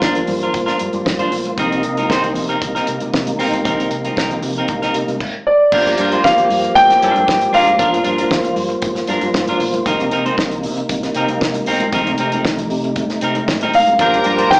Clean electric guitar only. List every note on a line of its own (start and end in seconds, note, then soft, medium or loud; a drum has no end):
0.03 0.20 D4 medium
0.03 0.16 F4 medium
0.03 0.15 A#4 medium
0.16 muted clean electric guitar stroke medium
0.28 muted clean electric guitar stroke soft
0.43 0.53 D4 medium
0.43 0.53 F4 medium
0.43 0.53 A#4 medium
0.54 muted clean electric guitar stroke soft
0.66 0.77 D4 medium
0.66 0.79 F4 medium
0.66 0.79 A#4 medium
0.79 muted clean electric guitar stroke soft
0.95 muted clean electric guitar stroke soft
1.05 muted clean electric guitar stroke soft
1.19 1.31 D4 medium
1.19 1.32 F4 medium
1.19 1.33 C5 medium
1.32 muted clean electric guitar stroke soft
1.47 muted clean electric guitar stroke soft
1.59 1.82 C4 medium
1.59 1.82 D#4 medium
1.59 1.82 A#4 medium
1.85 muted clean electric guitar stroke soft
1.98 2.09 C4 medium
1.98 2.09 D#4 medium
1.98 2.10 A#4 medium
2.10 2.27 C4 medium
2.10 2.24 D#4 loud
2.10 2.24 C5 loud
2.24 muted clean electric guitar stroke soft
2.35 muted clean electric guitar stroke soft
2.49 2.60 C4 medium
2.49 2.60 D#4 medium
2.49 2.62 A#4 medium
2.61 muted clean electric guitar stroke soft
2.75 2.87 C4 medium
2.75 2.88 D#4 medium
2.75 2.88 A#4 medium
2.88 muted clean electric guitar stroke soft
3.02 muted clean electric guitar stroke medium
3.27 muted clean electric guitar stroke soft
3.39 3.56 C4 medium
3.39 3.54 D#4 loud
3.39 3.53 A#4 loud
3.54 muted clean electric guitar stroke soft
3.64 3.89 C4 medium
3.64 3.89 D#4 medium
3.64 3.90 A#4 medium
3.90 muted clean electric guitar stroke soft
4.05 4.16 C4 soft
4.05 4.16 D#4 medium
4.05 4.17 A#4 medium
4.17 4.34 C4 medium
4.17 4.30 D#4 loud
4.17 4.30 A#4 loud
4.31 muted clean electric guitar stroke medium
4.43 muted clean electric guitar stroke soft
4.58 4.69 C4 medium
4.58 4.69 D#4 medium
4.58 4.69 A#4 medium
4.70 muted clean electric guitar stroke soft
4.82 4.95 C4 medium
4.82 4.96 D#4 medium
4.82 4.96 A#4 medium
4.96 muted clean electric guitar stroke soft
5.10 muted clean electric guitar stroke soft
5.72 5.90 D4 medium
5.72 5.90 F4 medium
5.72 5.91 A#4 medium
6.00 6.13 D4 medium
6.00 6.12 F4 medium
6.00 6.12 A#4 medium
6.13 6.23 D4 medium
6.13 6.24 F4 medium
6.13 6.24 C5 medium
6.24 muted clean electric guitar stroke soft
6.37 muted clean electric guitar stroke medium
6.64 muted clean electric guitar stroke soft
6.91 muted clean electric guitar stroke medium
7.02 7.22 D4 medium
7.02 7.15 F4 medium
7.02 7.14 A#4 medium
7.15 muted clean electric guitar stroke soft
7.28 muted clean electric guitar stroke soft
7.42 muted clean electric guitar stroke medium
7.53 7.71 D4 medium
7.53 7.67 F4 loud
7.53 7.66 A#4 loud
7.67 muted clean electric guitar stroke soft
7.79 7.96 D4 medium
7.79 7.97 F4 medium
7.79 7.97 A#4 loud
8.04 8.18 D4 medium
8.04 8.18 F4 medium
8.04 8.17 A#4 medium
8.18 8.29 D4 medium
8.18 8.30 F4 medium
8.18 8.31 A#4 medium
8.31 muted clean electric guitar stroke medium
8.44 muted clean electric guitar stroke medium
8.69 muted clean electric guitar stroke medium
8.95 muted clean electric guitar stroke medium
9.08 9.26 D4 medium
9.08 9.22 F4 medium
9.08 9.21 A#4 medium
9.22 muted clean electric guitar stroke medium
9.35 muted clean electric guitar stroke soft
9.49 9.60 D4 medium
9.49 9.61 F4 medium
9.49 9.61 A#4 medium
9.61 muted clean electric guitar stroke soft
9.75 muted clean electric guitar stroke soft
9.86 10.03 C4 medium
9.86 10.04 D#4 medium
9.86 10.04 A#4 medium
10.12 10.26 C4 medium
10.12 10.25 D#4 medium
10.12 10.25 A#4 medium
10.26 10.36 C4 medium
10.26 10.37 D#4 medium
10.26 10.37 C5 medium
10.37 muted clean electric guitar stroke medium
10.51 muted clean electric guitar stroke soft
10.77 muted clean electric guitar stroke medium
11.03 muted clean electric guitar stroke soft
11.16 11.33 C4 medium
11.16 11.30 D#4 medium
11.16 11.29 A#4 medium
11.30 muted clean electric guitar stroke soft
11.41 muted clean electric guitar stroke medium
11.55 muted clean electric guitar stroke medium
11.67 11.85 C4 loud
11.67 11.83 D#4 loud
11.67 11.82 A#4 loud
11.83 muted clean electric guitar stroke soft
11.93 12.10 C4 medium
11.93 12.11 D#4 loud
11.93 12.11 A#4 loud
12.19 12.33 C4 medium
12.19 12.32 D#4 medium
12.19 12.32 A#4 medium
12.33 12.45 C4 medium
12.33 12.45 D#4 medium
12.33 12.45 A#4 medium
12.46 muted clean electric guitar stroke soft
12.59 muted clean electric guitar stroke soft
12.85 muted clean electric guitar stroke soft
13.10 muted clean electric guitar stroke soft
13.22 13.39 C4 medium
13.22 13.37 D#4 medium
13.22 13.36 A#4 medium
13.37 muted clean electric guitar stroke soft
13.48 muted clean electric guitar stroke soft
13.63 13.74 C4 medium
13.63 13.75 D#4 medium
13.63 13.75 A#4 loud
13.76 muted clean electric guitar stroke soft
13.88 muted clean electric guitar stroke soft
13.99 14.17 D4 medium
13.99 14.18 F4 medium
13.99 14.18 A#4 medium
14.25 14.38 D4 medium
14.25 14.38 F4 medium
14.25 14.38 A#4 medium
14.38 14.51 D4 medium
14.38 14.52 F4 medium
14.38 14.51 C5 medium
14.52 muted clean electric guitar stroke soft